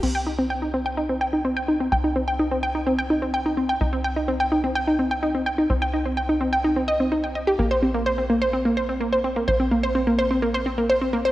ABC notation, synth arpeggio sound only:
X:1
M:4/4
L:1/16
Q:1/4=127
K:Cm
V:1 name="Synth arpeggio sound"
C g E C g E C g E C g E C g E C | g E C g E C g E C g E C g E C g | E C g E C g E C g E C g E C g E | C g E C g E C g E C e C E g e G |
B, c C B, c C B, c C B, c C B, c C B, | c C B, c C B, c C B, c C B, c C B, c |]